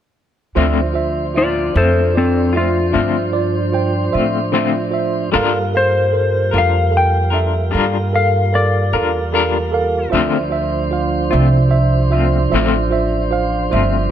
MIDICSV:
0, 0, Header, 1, 6, 480
1, 0, Start_track
1, 0, Key_signature, -1, "minor"
1, 0, Tempo, 797872
1, 331, Time_signature, 12, 3, 24, 8
1, 8489, End_track
2, 0, Start_track
2, 0, Title_t, "Electric slide guitar"
2, 0, Program_c, 0, 29
2, 826, Note_on_c, 0, 65, 61
2, 830, Note_on_c, 0, 74, 72
2, 1053, Note_off_c, 0, 74, 0
2, 1059, Note_off_c, 0, 65, 0
2, 1065, Note_on_c, 0, 69, 59
2, 1067, Note_on_c, 0, 72, 58
2, 1282, Note_off_c, 0, 69, 0
2, 1291, Note_off_c, 0, 72, 0
2, 1307, Note_on_c, 0, 60, 54
2, 1312, Note_on_c, 0, 69, 58
2, 1523, Note_off_c, 0, 60, 0
2, 1535, Note_off_c, 0, 69, 0
2, 1547, Note_on_c, 0, 65, 70
2, 2474, Note_off_c, 0, 65, 0
2, 3470, Note_on_c, 0, 72, 88
2, 3926, Note_off_c, 0, 72, 0
2, 3959, Note_on_c, 0, 77, 65
2, 4178, Note_off_c, 0, 77, 0
2, 4193, Note_on_c, 0, 79, 59
2, 4880, Note_off_c, 0, 79, 0
2, 4906, Note_on_c, 0, 77, 69
2, 5131, Note_off_c, 0, 77, 0
2, 5145, Note_on_c, 0, 74, 91
2, 6074, Note_off_c, 0, 74, 0
2, 8489, End_track
3, 0, Start_track
3, 0, Title_t, "Tine electric piano"
3, 0, Program_c, 1, 4
3, 333, Note_on_c, 1, 65, 67
3, 336, Note_on_c, 1, 72, 63
3, 347, Note_on_c, 1, 76, 64
3, 512, Note_off_c, 1, 65, 0
3, 514, Note_off_c, 1, 72, 0
3, 519, Note_off_c, 1, 76, 0
3, 559, Note_on_c, 1, 65, 54
3, 565, Note_on_c, 1, 72, 46
3, 574, Note_on_c, 1, 76, 62
3, 745, Note_off_c, 1, 65, 0
3, 748, Note_off_c, 1, 72, 0
3, 752, Note_off_c, 1, 76, 0
3, 806, Note_on_c, 1, 65, 42
3, 808, Note_on_c, 1, 72, 37
3, 813, Note_on_c, 1, 76, 46
3, 988, Note_off_c, 1, 65, 0
3, 990, Note_off_c, 1, 72, 0
3, 992, Note_off_c, 1, 76, 0
3, 1040, Note_on_c, 1, 65, 43
3, 1049, Note_on_c, 1, 72, 41
3, 1059, Note_on_c, 1, 76, 51
3, 1225, Note_off_c, 1, 65, 0
3, 1230, Note_off_c, 1, 72, 0
3, 1235, Note_off_c, 1, 76, 0
3, 1285, Note_on_c, 1, 65, 46
3, 1289, Note_on_c, 1, 72, 41
3, 1295, Note_on_c, 1, 74, 49
3, 1468, Note_off_c, 1, 65, 0
3, 1470, Note_off_c, 1, 72, 0
3, 1473, Note_off_c, 1, 74, 0
3, 1528, Note_on_c, 1, 65, 44
3, 1536, Note_on_c, 1, 72, 48
3, 1542, Note_on_c, 1, 76, 55
3, 1710, Note_off_c, 1, 65, 0
3, 1713, Note_off_c, 1, 72, 0
3, 1716, Note_off_c, 1, 76, 0
3, 1752, Note_on_c, 1, 65, 46
3, 1756, Note_on_c, 1, 72, 38
3, 1765, Note_on_c, 1, 76, 54
3, 1941, Note_off_c, 1, 65, 0
3, 1943, Note_off_c, 1, 72, 0
3, 1948, Note_off_c, 1, 76, 0
3, 1994, Note_on_c, 1, 65, 47
3, 2000, Note_on_c, 1, 72, 45
3, 2004, Note_on_c, 1, 74, 55
3, 2182, Note_off_c, 1, 65, 0
3, 2185, Note_off_c, 1, 72, 0
3, 2187, Note_off_c, 1, 74, 0
3, 2239, Note_on_c, 1, 65, 61
3, 2246, Note_on_c, 1, 72, 62
3, 2252, Note_on_c, 1, 79, 68
3, 2424, Note_off_c, 1, 65, 0
3, 2428, Note_off_c, 1, 72, 0
3, 2431, Note_off_c, 1, 79, 0
3, 2480, Note_on_c, 1, 65, 60
3, 2481, Note_on_c, 1, 72, 56
3, 2485, Note_on_c, 1, 76, 60
3, 2665, Note_off_c, 1, 65, 0
3, 2666, Note_off_c, 1, 72, 0
3, 2667, Note_off_c, 1, 76, 0
3, 2721, Note_on_c, 1, 65, 52
3, 2725, Note_on_c, 1, 72, 57
3, 2732, Note_on_c, 1, 76, 57
3, 2905, Note_off_c, 1, 65, 0
3, 2908, Note_off_c, 1, 72, 0
3, 2911, Note_off_c, 1, 76, 0
3, 2953, Note_on_c, 1, 65, 56
3, 2957, Note_on_c, 1, 72, 57
3, 2970, Note_on_c, 1, 76, 65
3, 3141, Note_off_c, 1, 65, 0
3, 3143, Note_off_c, 1, 72, 0
3, 3150, Note_off_c, 1, 76, 0
3, 3204, Note_on_c, 1, 69, 69
3, 3212, Note_on_c, 1, 70, 62
3, 3222, Note_on_c, 1, 77, 74
3, 3387, Note_off_c, 1, 69, 0
3, 3391, Note_off_c, 1, 70, 0
3, 3396, Note_off_c, 1, 77, 0
3, 3448, Note_on_c, 1, 69, 42
3, 3456, Note_on_c, 1, 70, 42
3, 3459, Note_on_c, 1, 77, 54
3, 3629, Note_off_c, 1, 69, 0
3, 3633, Note_off_c, 1, 70, 0
3, 3634, Note_off_c, 1, 77, 0
3, 3680, Note_on_c, 1, 69, 50
3, 3684, Note_on_c, 1, 70, 45
3, 3692, Note_on_c, 1, 72, 51
3, 3865, Note_off_c, 1, 69, 0
3, 3866, Note_off_c, 1, 70, 0
3, 3871, Note_off_c, 1, 72, 0
3, 3927, Note_on_c, 1, 69, 46
3, 3928, Note_on_c, 1, 70, 42
3, 3937, Note_on_c, 1, 77, 46
3, 4108, Note_off_c, 1, 69, 0
3, 4109, Note_off_c, 1, 70, 0
3, 4113, Note_off_c, 1, 77, 0
3, 4154, Note_on_c, 1, 69, 46
3, 4161, Note_on_c, 1, 70, 42
3, 4166, Note_on_c, 1, 77, 50
3, 4342, Note_off_c, 1, 69, 0
3, 4345, Note_off_c, 1, 70, 0
3, 4347, Note_off_c, 1, 77, 0
3, 4404, Note_on_c, 1, 69, 46
3, 4410, Note_on_c, 1, 70, 45
3, 4416, Note_on_c, 1, 76, 61
3, 4587, Note_off_c, 1, 69, 0
3, 4590, Note_off_c, 1, 70, 0
3, 4593, Note_off_c, 1, 76, 0
3, 4645, Note_on_c, 1, 69, 48
3, 4655, Note_on_c, 1, 70, 43
3, 4662, Note_on_c, 1, 77, 52
3, 4827, Note_off_c, 1, 69, 0
3, 4832, Note_off_c, 1, 70, 0
3, 4836, Note_off_c, 1, 77, 0
3, 4891, Note_on_c, 1, 69, 52
3, 4898, Note_on_c, 1, 70, 50
3, 4900, Note_on_c, 1, 77, 56
3, 5070, Note_off_c, 1, 69, 0
3, 5074, Note_off_c, 1, 70, 0
3, 5075, Note_off_c, 1, 77, 0
3, 5129, Note_on_c, 1, 69, 51
3, 5130, Note_on_c, 1, 70, 52
3, 5138, Note_on_c, 1, 77, 58
3, 5309, Note_off_c, 1, 69, 0
3, 5310, Note_off_c, 1, 70, 0
3, 5314, Note_off_c, 1, 77, 0
3, 5371, Note_on_c, 1, 69, 49
3, 5374, Note_on_c, 1, 70, 44
3, 5376, Note_on_c, 1, 77, 51
3, 5550, Note_off_c, 1, 69, 0
3, 5552, Note_off_c, 1, 70, 0
3, 5553, Note_off_c, 1, 77, 0
3, 5610, Note_on_c, 1, 69, 50
3, 5616, Note_on_c, 1, 70, 42
3, 5620, Note_on_c, 1, 77, 48
3, 5790, Note_off_c, 1, 69, 0
3, 5793, Note_off_c, 1, 70, 0
3, 5795, Note_off_c, 1, 77, 0
3, 5845, Note_on_c, 1, 69, 57
3, 5854, Note_on_c, 1, 70, 53
3, 5860, Note_on_c, 1, 77, 68
3, 6028, Note_off_c, 1, 69, 0
3, 6032, Note_off_c, 1, 70, 0
3, 6035, Note_off_c, 1, 77, 0
3, 6076, Note_on_c, 1, 65, 70
3, 6082, Note_on_c, 1, 72, 54
3, 6088, Note_on_c, 1, 76, 69
3, 6263, Note_off_c, 1, 65, 0
3, 6266, Note_off_c, 1, 72, 0
3, 6269, Note_off_c, 1, 76, 0
3, 6317, Note_on_c, 1, 65, 61
3, 6323, Note_on_c, 1, 72, 47
3, 6330, Note_on_c, 1, 76, 64
3, 6504, Note_off_c, 1, 65, 0
3, 6507, Note_off_c, 1, 72, 0
3, 6510, Note_off_c, 1, 76, 0
3, 6562, Note_on_c, 1, 65, 59
3, 6564, Note_on_c, 1, 72, 50
3, 6574, Note_on_c, 1, 77, 58
3, 6747, Note_off_c, 1, 65, 0
3, 6748, Note_off_c, 1, 72, 0
3, 6753, Note_off_c, 1, 77, 0
3, 6798, Note_on_c, 1, 65, 52
3, 6802, Note_on_c, 1, 72, 57
3, 6810, Note_on_c, 1, 76, 63
3, 6985, Note_off_c, 1, 65, 0
3, 6987, Note_off_c, 1, 72, 0
3, 6991, Note_off_c, 1, 76, 0
3, 7032, Note_on_c, 1, 65, 53
3, 7041, Note_on_c, 1, 72, 56
3, 7044, Note_on_c, 1, 76, 68
3, 7222, Note_off_c, 1, 65, 0
3, 7227, Note_off_c, 1, 72, 0
3, 7228, Note_off_c, 1, 76, 0
3, 7279, Note_on_c, 1, 65, 60
3, 7286, Note_on_c, 1, 72, 57
3, 7290, Note_on_c, 1, 76, 64
3, 7466, Note_off_c, 1, 65, 0
3, 7469, Note_off_c, 1, 72, 0
3, 7472, Note_off_c, 1, 76, 0
3, 7521, Note_on_c, 1, 65, 59
3, 7528, Note_on_c, 1, 72, 54
3, 7530, Note_on_c, 1, 76, 64
3, 7707, Note_off_c, 1, 65, 0
3, 7711, Note_off_c, 1, 72, 0
3, 7712, Note_off_c, 1, 76, 0
3, 7761, Note_on_c, 1, 65, 61
3, 7768, Note_on_c, 1, 72, 56
3, 7775, Note_on_c, 1, 76, 69
3, 7948, Note_off_c, 1, 65, 0
3, 7951, Note_off_c, 1, 72, 0
3, 7954, Note_off_c, 1, 76, 0
3, 8005, Note_on_c, 1, 65, 66
3, 8010, Note_on_c, 1, 72, 59
3, 8016, Note_on_c, 1, 77, 73
3, 8190, Note_off_c, 1, 65, 0
3, 8192, Note_off_c, 1, 72, 0
3, 8196, Note_off_c, 1, 77, 0
3, 8242, Note_on_c, 1, 65, 60
3, 8250, Note_on_c, 1, 72, 52
3, 8260, Note_on_c, 1, 76, 70
3, 8429, Note_off_c, 1, 65, 0
3, 8433, Note_off_c, 1, 72, 0
3, 8438, Note_off_c, 1, 76, 0
3, 8489, End_track
4, 0, Start_track
4, 0, Title_t, "Tonewheel organ"
4, 0, Program_c, 2, 16
4, 333, Note_on_c, 2, 62, 61
4, 337, Note_on_c, 2, 72, 63
4, 345, Note_on_c, 2, 53, 57
4, 3186, Note_off_c, 2, 62, 0
4, 3188, Note_off_c, 2, 72, 0
4, 3192, Note_off_c, 2, 53, 0
4, 3210, Note_on_c, 2, 55, 62
4, 3211, Note_on_c, 2, 58, 62
4, 3213, Note_on_c, 2, 65, 64
4, 6066, Note_off_c, 2, 55, 0
4, 6067, Note_off_c, 2, 58, 0
4, 6068, Note_off_c, 2, 65, 0
4, 6091, Note_on_c, 2, 72, 65
4, 6093, Note_on_c, 2, 53, 68
4, 6094, Note_on_c, 2, 62, 60
4, 8489, Note_off_c, 2, 53, 0
4, 8489, Note_off_c, 2, 62, 0
4, 8489, Note_off_c, 2, 72, 0
4, 8489, End_track
5, 0, Start_track
5, 0, Title_t, "Clean electric guitar"
5, 0, Program_c, 3, 27
5, 332, Note_on_c, 3, 50, 73
5, 338, Note_on_c, 3, 57, 75
5, 342, Note_on_c, 3, 65, 74
5, 343, Note_on_c, 3, 60, 85
5, 476, Note_off_c, 3, 50, 0
5, 479, Note_off_c, 3, 57, 0
5, 481, Note_off_c, 3, 60, 0
5, 481, Note_off_c, 3, 65, 0
5, 1059, Note_on_c, 3, 65, 49
5, 1068, Note_on_c, 3, 60, 48
5, 1070, Note_on_c, 3, 57, 42
5, 1199, Note_off_c, 3, 65, 0
5, 1204, Note_off_c, 3, 57, 0
5, 1204, Note_off_c, 3, 60, 0
5, 1521, Note_on_c, 3, 65, 47
5, 1528, Note_on_c, 3, 60, 42
5, 1536, Note_on_c, 3, 57, 36
5, 1670, Note_off_c, 3, 65, 0
5, 1673, Note_off_c, 3, 60, 0
5, 1677, Note_off_c, 3, 57, 0
5, 1760, Note_on_c, 3, 50, 64
5, 1766, Note_on_c, 3, 57, 64
5, 1768, Note_on_c, 3, 65, 66
5, 1769, Note_on_c, 3, 60, 59
5, 1909, Note_off_c, 3, 50, 0
5, 1912, Note_off_c, 3, 57, 0
5, 1913, Note_off_c, 3, 65, 0
5, 1914, Note_off_c, 3, 60, 0
5, 2493, Note_on_c, 3, 65, 51
5, 2496, Note_on_c, 3, 60, 51
5, 2512, Note_on_c, 3, 57, 44
5, 2635, Note_off_c, 3, 65, 0
5, 2637, Note_off_c, 3, 60, 0
5, 2645, Note_off_c, 3, 57, 0
5, 2721, Note_on_c, 3, 50, 70
5, 2729, Note_on_c, 3, 60, 73
5, 2730, Note_on_c, 3, 57, 66
5, 2736, Note_on_c, 3, 65, 69
5, 2869, Note_off_c, 3, 50, 0
5, 2874, Note_off_c, 3, 57, 0
5, 2874, Note_off_c, 3, 60, 0
5, 2877, Note_off_c, 3, 65, 0
5, 3199, Note_on_c, 3, 55, 83
5, 3209, Note_on_c, 3, 62, 79
5, 3209, Note_on_c, 3, 65, 84
5, 3211, Note_on_c, 3, 70, 85
5, 3348, Note_off_c, 3, 55, 0
5, 3353, Note_off_c, 3, 62, 0
5, 3353, Note_off_c, 3, 65, 0
5, 3354, Note_off_c, 3, 70, 0
5, 3918, Note_on_c, 3, 70, 52
5, 3925, Note_on_c, 3, 65, 44
5, 3937, Note_on_c, 3, 62, 44
5, 4068, Note_off_c, 3, 70, 0
5, 4071, Note_off_c, 3, 65, 0
5, 4077, Note_off_c, 3, 62, 0
5, 4394, Note_on_c, 3, 70, 45
5, 4399, Note_on_c, 3, 65, 40
5, 4408, Note_on_c, 3, 62, 36
5, 4546, Note_off_c, 3, 70, 0
5, 4548, Note_off_c, 3, 65, 0
5, 4553, Note_off_c, 3, 62, 0
5, 4638, Note_on_c, 3, 55, 69
5, 4641, Note_on_c, 3, 62, 71
5, 4647, Note_on_c, 3, 65, 63
5, 4650, Note_on_c, 3, 70, 69
5, 4788, Note_off_c, 3, 55, 0
5, 4789, Note_off_c, 3, 62, 0
5, 4792, Note_off_c, 3, 65, 0
5, 4794, Note_off_c, 3, 70, 0
5, 5375, Note_on_c, 3, 70, 53
5, 5384, Note_on_c, 3, 65, 43
5, 5389, Note_on_c, 3, 62, 44
5, 5516, Note_off_c, 3, 70, 0
5, 5521, Note_off_c, 3, 65, 0
5, 5524, Note_off_c, 3, 62, 0
5, 5609, Note_on_c, 3, 55, 58
5, 5617, Note_on_c, 3, 62, 60
5, 5618, Note_on_c, 3, 65, 60
5, 5624, Note_on_c, 3, 70, 71
5, 5753, Note_off_c, 3, 55, 0
5, 5757, Note_off_c, 3, 62, 0
5, 5758, Note_off_c, 3, 65, 0
5, 5761, Note_off_c, 3, 70, 0
5, 6090, Note_on_c, 3, 50, 71
5, 6096, Note_on_c, 3, 57, 84
5, 6104, Note_on_c, 3, 65, 86
5, 6106, Note_on_c, 3, 60, 80
5, 6234, Note_off_c, 3, 50, 0
5, 6237, Note_off_c, 3, 57, 0
5, 6241, Note_off_c, 3, 65, 0
5, 6242, Note_off_c, 3, 60, 0
5, 6802, Note_on_c, 3, 65, 52
5, 6813, Note_on_c, 3, 60, 56
5, 6820, Note_on_c, 3, 57, 48
5, 6951, Note_off_c, 3, 65, 0
5, 6956, Note_off_c, 3, 60, 0
5, 6960, Note_off_c, 3, 57, 0
5, 7296, Note_on_c, 3, 65, 53
5, 7305, Note_on_c, 3, 60, 45
5, 7310, Note_on_c, 3, 57, 40
5, 7438, Note_off_c, 3, 65, 0
5, 7443, Note_off_c, 3, 60, 0
5, 7446, Note_off_c, 3, 57, 0
5, 7543, Note_on_c, 3, 50, 82
5, 7548, Note_on_c, 3, 57, 79
5, 7550, Note_on_c, 3, 60, 78
5, 7553, Note_on_c, 3, 65, 81
5, 7682, Note_off_c, 3, 50, 0
5, 7684, Note_off_c, 3, 57, 0
5, 7686, Note_off_c, 3, 60, 0
5, 7687, Note_off_c, 3, 65, 0
5, 8252, Note_on_c, 3, 65, 58
5, 8262, Note_on_c, 3, 60, 48
5, 8266, Note_on_c, 3, 57, 44
5, 8397, Note_off_c, 3, 65, 0
5, 8402, Note_off_c, 3, 60, 0
5, 8405, Note_off_c, 3, 57, 0
5, 8489, End_track
6, 0, Start_track
6, 0, Title_t, "Upright bass"
6, 0, Program_c, 4, 32
6, 339, Note_on_c, 4, 38, 67
6, 1033, Note_off_c, 4, 38, 0
6, 1055, Note_on_c, 4, 41, 88
6, 1751, Note_off_c, 4, 41, 0
6, 1774, Note_on_c, 4, 43, 62
6, 2470, Note_off_c, 4, 43, 0
6, 2493, Note_on_c, 4, 45, 66
6, 3190, Note_off_c, 4, 45, 0
6, 3214, Note_on_c, 4, 43, 63
6, 3910, Note_off_c, 4, 43, 0
6, 3932, Note_on_c, 4, 41, 80
6, 4629, Note_off_c, 4, 41, 0
6, 4658, Note_on_c, 4, 43, 66
6, 5353, Note_off_c, 4, 43, 0
6, 5371, Note_on_c, 4, 40, 69
6, 6069, Note_off_c, 4, 40, 0
6, 6093, Note_on_c, 4, 38, 70
6, 6791, Note_off_c, 4, 38, 0
6, 6816, Note_on_c, 4, 36, 82
6, 7513, Note_off_c, 4, 36, 0
6, 7534, Note_on_c, 4, 33, 63
6, 8233, Note_off_c, 4, 33, 0
6, 8258, Note_on_c, 4, 31, 80
6, 8489, Note_off_c, 4, 31, 0
6, 8489, End_track
0, 0, End_of_file